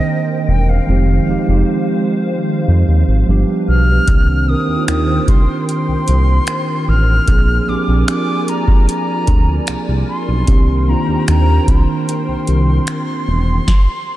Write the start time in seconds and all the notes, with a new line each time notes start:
Already playing: D#3 A#3 C4 D4 A#4 C5 D#5 G5
0.48 E1 G5
0.69 F5
0.86 F1 F3 G#3 C4 D#4 C5 F5
0.91 G4
1.26 F1 F3 G#3 C4 D#4
1.30 G4
1.46 F1 F3 G#3 C4 D#4
1.51 G4
2.68 F2
2.88 D#2
3.08 G#1
3.26 G1 F3 G3 B3 D4 G4 B4
3.31 G4
3.68 B1 F6
4.06 C2 D#3 A#3 C4 D4 A#4 C5 G5, kick, closed hi-hat
4.11 G4
4.46 D#3 A#3 C4 D4 D#6
4.51 A#4
4.66 D#2 D#3 A#3 C4 D4
4.70 D#4
4.77 F4
4.88 D#2 D#6, finger snap, closed hi-hat
5.28 C2 C6, kick, closed hi-hat
5.68 C6, closed hi-hat
5.88 C2
6.08 C2, closed hi-hat
6.47 finger snap, closed hi-hat
6.88 A1 F6
7.26 A#1 F3 A#3 C4 D4 F4 D5 G#5, kick, closed hi-hat
7.31 G#4
7.66 A#1 F3 A#3 C4 D4 D6
7.71 G4
7.86 A#1 F3 A#3 C4 D4
7.91 G4
7.97 G#4
8.08 D6, finger snap, closed hi-hat
8.48 A#5, closed hi-hat
8.68 kick
8.89 A#5, closed hi-hat
9.27 D2, kick, closed hi-hat
9.67 C2, finger snap, closed hi-hat
9.88 C2
10.08 C6
10.28 B1
10.46 C2 D#3 A#3 C4 D4 A#4 C5 G5, kick, closed hi-hat
10.51 G4
10.86 D#3 A#3 C4 D4 A#5
10.90 F4
11.06 D#2 D#3 A#3 C4 D4
11.11 G4
11.28 D#2 A#5, finger snap, closed hi-hat
11.68 C2 C6, kick, closed hi-hat
12.09 closed hi-hat
12.28 C2
12.47 C2, closed hi-hat
12.87 finger snap, closed hi-hat
13.28 E1
13.68 kick, snare